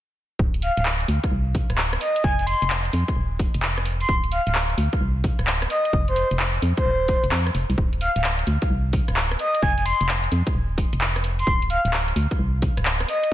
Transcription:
0.39 0.70 D1 medium
0.39 kick loud
0.54 closed hi-hat soft
0.62 0.72 F5 medium
0.62 open hi-hat loud
0.77 1.05 D1 loud
0.77 0.83 F5 medium
0.77 closed hi-hat medium
0.85 clap loud
1.00 closed hi-hat soft
1.08 1.19 D2 medium
1.08 open hi-hat loud
1.24 kick medium
1.24 cross-stick soft
1.24 closed hi-hat medium
1.32 1.63 C2 medium
1.55 kick loud
1.55 open hi-hat loud
1.70 1.97 D1 medium
1.70 cross-stick soft
1.70 closed hi-hat medium
1.78 clap loud
1.93 cross-stick medium
1.93 closed hi-hat soft
2.01 2.22 D#5 medium
2.01 open hi-hat loud
2.16 closed hi-hat medium
2.24 2.55 F1 medium
2.24 2.34 G#5 medium
2.24 kick loud
2.39 2.44 G#5 medium
2.39 closed hi-hat soft
2.47 2.68 C6 medium
2.47 open hi-hat medium
2.62 2.90 F1 loud
2.62 closed hi-hat medium
2.70 clap loud
2.85 closed hi-hat soft
2.93 3.04 F2 medium
2.93 open hi-hat loud
3.08 kick loud
3.08 cross-stick soft
3.08 closed hi-hat medium
3.16 3.48 D#1 medium
3.39 kick loud
3.39 open hi-hat loud
3.54 4.05 F1 medium
3.54 closed hi-hat medium
3.62 clap loud
3.78 cross-stick medium
3.78 closed hi-hat soft
3.85 open hi-hat loud
4.01 4.15 C6 medium
4.01 open hi-hat medium
4.09 4.40 D1 medium
4.09 kick loud
4.24 closed hi-hat soft
4.32 4.42 F5 medium
4.32 open hi-hat medium
4.47 4.74 D1 loud
4.47 4.52 F5 medium
4.47 closed hi-hat medium
4.55 clap loud
4.70 closed hi-hat soft
4.78 4.88 D2 medium
4.78 open hi-hat loud
4.93 kick loud
4.93 cross-stick soft
4.93 closed hi-hat medium
5.01 5.32 C2 medium
5.24 kick loud
5.24 open hi-hat loud
5.39 5.66 D1 medium
5.39 cross-stick soft
5.39 closed hi-hat medium
5.47 clap loud
5.62 cross-stick medium
5.62 closed hi-hat soft
5.70 5.92 D#5 medium
5.70 open hi-hat medium
5.85 closed hi-hat medium
5.93 6.24 F1 loud
5.93 kick loud
6.08 6.28 C5 medium
6.08 closed hi-hat soft
6.16 open hi-hat loud
6.31 6.59 F1 loud
6.31 closed hi-hat medium
6.39 clap loud
6.54 closed hi-hat soft
6.62 6.73 F2 medium
6.62 open hi-hat medium
6.77 7.24 C5 medium
6.77 kick loud
6.77 cross-stick soft
6.77 closed hi-hat medium
6.86 7.17 D#1 medium
7.08 kick loud
7.08 open hi-hat medium
7.24 7.31 F1 medium
7.24 closed hi-hat medium
7.31 7.50 F2 medium
7.31 clap loud
7.47 cross-stick medium
7.47 closed hi-hat soft
7.55 7.65 F1 medium
7.55 open hi-hat loud
7.70 7.75 C2 medium
7.70 open hi-hat medium
7.78 8.09 D1 medium
7.78 kick loud
7.93 closed hi-hat soft
8.01 8.11 F5 medium
8.01 open hi-hat medium
8.16 8.43 D1 loud
8.16 8.21 F5 medium
8.16 closed hi-hat medium
8.24 clap loud
8.39 closed hi-hat soft
8.47 8.58 D2 medium
8.47 open hi-hat loud
8.62 kick loud
8.62 cross-stick soft
8.62 closed hi-hat medium
8.70 9.01 C2 medium
8.93 kick loud
8.93 open hi-hat medium
9.08 9.36 D1 medium
9.08 cross-stick soft
9.08 closed hi-hat medium
9.16 clap loud
9.31 cross-stick medium
9.31 closed hi-hat soft
9.39 9.61 D#5 medium
9.39 open hi-hat loud
9.54 closed hi-hat medium
9.62 9.94 F1 medium
9.62 9.72 G#5 medium
9.62 kick loud
9.78 9.83 G#5 medium
9.78 closed hi-hat soft
9.86 10.07 C6 medium
9.86 open hi-hat loud
10.01 10.28 F1 loud
10.01 closed hi-hat medium
10.09 clap loud
10.24 closed hi-hat soft
10.32 10.42 F2 medium
10.32 open hi-hat loud
10.47 kick medium
10.47 cross-stick soft
10.47 closed hi-hat medium
10.55 10.86 D#1 medium
10.78 kick loud
10.78 open hi-hat loud
10.93 11.43 F1 medium
10.93 closed hi-hat medium
11.01 clap loud
11.16 cross-stick medium
11.16 closed hi-hat medium
11.24 open hi-hat loud
11.39 11.53 C6 medium
11.39 open hi-hat medium
11.47 11.78 D1 medium
11.47 kick loud
11.62 closed hi-hat soft
11.70 11.80 F5 medium
11.70 open hi-hat loud
11.85 12.12 D1 loud
11.85 11.91 F5 medium
11.85 closed hi-hat medium
11.93 clap loud
12.08 closed hi-hat soft
12.16 12.27 D2 medium
12.16 open hi-hat loud
12.31 kick medium
12.31 cross-stick soft
12.31 closed hi-hat medium
12.39 12.70 C2 medium
12.62 kick loud
12.62 open hi-hat loud
12.77 13.05 D1 medium
12.77 cross-stick soft
12.77 closed hi-hat medium
12.85 clap loud
13.00 cross-stick medium
13.00 closed hi-hat medium
13.08 13.30 D#5 medium
13.08 open hi-hat loud
13.23 closed hi-hat medium

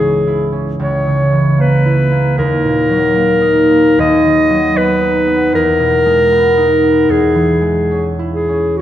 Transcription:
0.00 0.78 C#2 soft
0.00 0.84 G#2 soft
0.00 0.84 E3 soft
0.00 0.51 C#4 soft
0.00 0.51 G#4 medium
0.27 1.84 E4 soft
0.52 2.41 C#4 soft
0.79 2.41 C#2 soft
0.79 1.62 C#5 medium
1.07 2.41 C#3 soft
1.32 2.41 E3 soft
1.58 2.10 A#3 soft
1.58 2.38 B4 medium
1.86 2.41 E4 soft
2.11 3.14 A#3 soft
2.38 3.97 D#2 soft
2.38 4.02 A#4 medium
2.65 4.04 A#2 soft
2.89 4.49 F#3 soft
3.15 3.70 A#3 soft
3.41 5.00 D#4 soft
3.71 4.03 A#3 soft
3.98 5.58 D#2 medium
3.98 4.79 D#5 medium
4.25 5.58 D#3 soft
4.50 5.57 F#3 soft
4.75 5.26 B3 soft
4.75 5.55 B4 medium
5.01 6.56 D#4 soft
5.27 6.31 B3 soft
5.53 7.08 E2 soft
5.53 7.12 A#4 medium
5.79 7.13 B2 soft
6.05 7.60 G#3 soft
6.32 6.82 B3 soft
6.57 7.13 D#4 soft
6.83 7.13 B3 soft
7.09 8.82 E2 soft
7.09 8.16 G#4 medium
7.35 8.82 E3 soft
7.61 8.82 G#3 soft
7.91 8.48 C#4 soft
8.19 8.82 E4 soft
8.33 8.79 G#4 medium
8.49 8.82 C#4 soft
8.77 8.82 F#4 medium

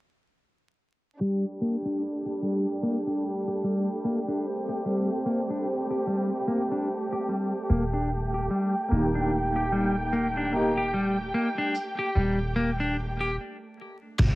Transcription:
1.20 7.65 G3 medium
1.20 1.44 G3 medium
1.20 13.37 A3 medium
1.20 4.42 D4 medium
1.20 13.33 G4 medium
1.20 13.37 A5 medium
1.61 1.75 A#3 medium
1.85 2.01 D4 medium
2.02 shaker medium
2.26 2.41 G4 medium
2.43 2.65 G3 medium
2.83 2.97 A#3 medium
3.07 3.23 D4 medium
3.48 3.62 G4 medium
3.64 3.87 G3 medium
3.64 shaker medium
4.04 4.18 A#3 medium
4.28 4.44 D4 medium
4.45 7.66 C4 medium
4.69 4.84 G4 medium
4.86 5.09 G3 medium
5.26 5.40 A#3 medium
5.26 shaker medium
5.50 5.66 D4 medium
5.91 6.06 G4 medium
6.07 6.30 G3 medium
6.48 6.62 A#3 medium
6.72 6.88 D4 medium
6.88 shaker medium
7.12 7.27 G4 medium
7.29 7.52 G3 medium
7.69 8.48 D#1 medium
7.69 7.83 A#3 medium
7.69 13.33 G5 medium
7.93 8.09 D4 medium
8.34 8.49 G4 medium
8.51 8.73 G3 medium
8.51 shaker medium
8.88 11.31 D#1 medium
8.88 10.50 D#3 medium
8.88 10.48 A#3 medium
8.88 9.05 A#3 medium
8.97 10.52 G4 medium
9.15 9.31 D4 medium
9.56 9.71 G4 medium
9.72 9.95 G3 medium
10.12 10.26 A#3 medium
10.12 shaker medium
10.37 10.53 D4 medium
10.52 10.79 A#3 medium
10.52 10.80 D#4 medium
10.56 10.81 G4 medium
10.77 10.92 G4 medium
10.94 11.17 G3 medium
11.34 11.48 A#3 medium
11.58 11.74 D4 medium
11.75 shaker medium
11.99 12.14 G4 medium
12.15 13.38 D#1 medium
12.15 12.38 G3 medium
12.56 12.70 A#3 medium
12.80 12.96 D4 medium
13.21 13.35 G4 medium
14.18 14.35 G1 loud
14.18 14.35 G3 medium
14.18 kick loud
14.18 crash medium
14.18 ride medium

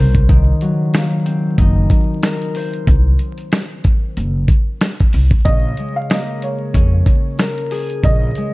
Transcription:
0.00 0.50 C2 loud
0.00 0.94 A#3 medium
0.00 1.77 A#4 loud
0.00 1.95 C5 medium
0.15 kick medium
0.15 closed hi-hat medium
0.29 4.19 D#3 medium
0.29 kick loud
0.29 closed hi-hat loud
0.61 4.52 F#3 medium
0.61 closed hi-hat medium
0.94 4.16 A#3 medium
0.94 snare loud
0.94 closed hi-hat loud
1.25 4.25 C4 medium
1.25 closed hi-hat medium
1.58 1.85 F#1 medium
1.58 4.28 D#4 loud
1.58 kick medium
1.58 closed hi-hat loud
1.90 kick medium
1.90 closed hi-hat medium
2.23 4.35 A#4 loud
2.23 snare loud
2.23 closed hi-hat medium
2.42 closed hi-hat soft
2.55 4.54 C5 medium
2.55 open hi-hat medium
2.73 closed hi-hat medium
2.87 3.14 C2 loud
2.87 kick loud
2.87 closed hi-hat loud
3.19 closed hi-hat medium
3.38 closed hi-hat medium
3.52 snare loud
3.52 closed hi-hat loud
3.84 kick medium
3.84 closed hi-hat medium
4.17 4.43 F#1 medium
4.17 closed hi-hat medium
4.48 kick loud
4.48 closed hi-hat medium
4.81 snare loud
4.81 closed hi-hat medium
5.00 kick medium
5.00 closed hi-hat soft
5.13 5.29 C2 medium
5.13 open hi-hat medium
5.31 kick medium
5.45 5.72 A#1 loud
5.45 8.01 C#3 medium
5.45 5.93 D#5 loud
5.45 kick loud
5.45 closed hi-hat loud
5.77 8.36 G#3 medium
5.77 closed hi-hat medium
5.96 6.09 F5 medium
6.10 8.54 A#3 medium
6.10 6.39 D#5 medium
6.10 snare loud
6.10 closed hi-hat loud
6.42 8.00 C#5 medium
6.42 closed hi-hat medium
6.74 7.01 F2 loud
6.74 8.54 C#4 loud
6.74 kick medium
6.74 closed hi-hat loud
7.06 kick loud
7.06 closed hi-hat medium
7.39 8.54 A#4 loud
7.39 snare loud
7.39 closed hi-hat medium
7.58 closed hi-hat soft
7.71 8.54 G#4 loud
7.71 open hi-hat medium
7.90 closed hi-hat medium
8.03 8.30 A#1 loud
8.03 8.54 C#3 loud
8.03 8.52 D#5 loud
8.03 kick loud
8.03 closed hi-hat loud
8.35 8.54 G#3 medium
8.35 closed hi-hat medium

